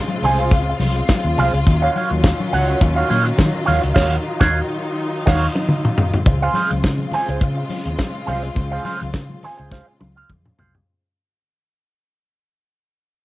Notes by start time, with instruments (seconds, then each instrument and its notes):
Already playing: string section C#3 G#3 C4 F4
0.08 muted clean electric guitar stroke, high conga
0.22 fingered electric bass C2, clean electric guitar G#4 C5 G#5, open hi-hat, muted conga, low conga
0.39 clean electric guitar G#4 C5, closed hi-hat
0.51 fingered electric bass C#2, muted clean electric guitar stroke, kick, closed hi-hat
0.70 muted clean electric guitar stroke
0.80 fingered electric bass C2, open hi-hat, high conga
0.95 muted clean electric guitar stroke, closed hi-hat
1.09 kick, snare, closed hi-hat, muted conga, high conga
1.25 fingered electric bass D#2, muted clean electric guitar stroke
1.38 fingered electric bass C2, clean electric guitar G#4 C5 F5, open hi-hat, high conga, low conga
1.53 fingered electric bass C#2, muted clean electric guitar stroke, closed hi-hat
1.66 fingered electric bass D#2, string section D#3 F#3 C#4, muted clean electric guitar stroke, kick, closed hi-hat, low conga
1.82 clean electric guitar F#4 C#5 F5
1.95 clean electric guitar F#4 C#5 F5, open hi-hat, high conga
2.10 fingered electric bass D#2, muted clean electric guitar stroke, closed hi-hat, high conga
2.24 muted clean electric guitar stroke, kick, snare, closed hi-hat
2.40 muted clean electric guitar stroke, high conga
2.53 fingered electric bass C#2, clean electric guitar F#4 C#5 F#5, open hi-hat, muted conga, low conga
2.68 clean electric guitar F#4 C#5 F#5, closed hi-hat
2.81 fingered electric bass D#2, kick, closed hi-hat, muted conga
2.96 clean electric guitar F#4 C#5 F5
3.09 fingered electric bass A#2, clean electric guitar F#4 C#5 F5, open hi-hat, high conga
3.25 muted clean electric guitar stroke, closed hi-hat
3.38 fingered electric bass D#3, kick, snare, closed hi-hat, muted conga, high conga
3.53 muted clean electric guitar stroke
3.65 fingered electric bass D#2, clean electric guitar F#4 C#5 F5, open hi-hat, muted conga, high conga, low conga
3.83 fingered electric bass C#2, muted clean electric guitar stroke, closed hi-hat
3.94 fingered electric bass D#2, string section D#4, clean electric guitar F#4 C#5 F5, kick, snare, crash
4.39 fingered electric bass D#2, clean electric guitar F#4 C#5 F5, kick, snare
5.26 fingered electric bass D#2, clean electric guitar F#4 C#5 F5, kick, snare, crash
5.55 high tom
5.68 mid tom
5.85 mid tom
5.98 floor tom
6.13 floor tom
6.25 fingered electric bass C#2, string section C#3 G#3 C4 F4, muted clean electric guitar stroke, kick, closed hi-hat, muted conga, low conga
6.42 clean electric guitar G#4 C5 F5
6.53 clean electric guitar G#4 C5 F5, open hi-hat, muted conga, high conga
6.70 fingered electric bass C#2, muted clean electric guitar stroke, closed hi-hat, high conga
6.83 fingered electric bass C#3, muted clean electric guitar stroke, kick, snare, closed hi-hat
6.98 muted clean electric guitar stroke, high conga
7.11 clean electric guitar G#4 C5 G#5, open hi-hat, low conga
7.28 fingered electric bass C#2, clean electric guitar G#4 C5, closed hi-hat
7.41 fingered electric bass C#3, muted clean electric guitar stroke, kick, closed hi-hat, muted conga
7.57 muted clean electric guitar stroke
7.70 open hi-hat, muted conga, high conga
7.85 fingered electric bass D#2, muted clean electric guitar stroke, closed hi-hat
7.98 kick, snare, closed hi-hat, muted conga, high conga
8.15 muted clean electric guitar stroke
8.26 fingered electric bass C2, clean electric guitar G#4 C5 F5, open hi-hat, high conga, low conga
8.43 muted clean electric guitar stroke, closed hi-hat
8.55 fingered electric bass C#2, muted clean electric guitar stroke, kick, closed hi-hat, low conga
8.71 clean electric guitar G#4 C5 F5
8.85 clean electric guitar G#4 C5 F5, open hi-hat, high conga
9.00 fingered electric bass C#2, muted clean electric guitar stroke, closed hi-hat, high conga
9.13 fingered electric bass C#3, muted clean electric guitar stroke, kick, snare, closed hi-hat
9.29 muted clean electric guitar stroke, high conga
9.43 clean electric guitar G#4 C5 G#5, open hi-hat, muted conga, low conga
9.58 fingered electric bass C#2, clean electric guitar G#4 C5 G#5, closed hi-hat
9.71 clean electric guitar G#4 C5 F5, kick, snare, muted conga
9.87 muted clean electric guitar stroke
10.00 fingered electric bass C#2, muted clean electric guitar stroke, high tom, high conga
10.16 clean electric guitar G#4 C5 F5
10.30 fingered electric bass F2, kick, mid tom, muted conga, high conga
10.45 muted clean electric guitar stroke, mid tom
10.58 fingered electric bass C2, clean electric guitar G#4 C5 F5, floor tom, muted conga, high conga, low conga
10.75 muted clean electric guitar stroke, floor tom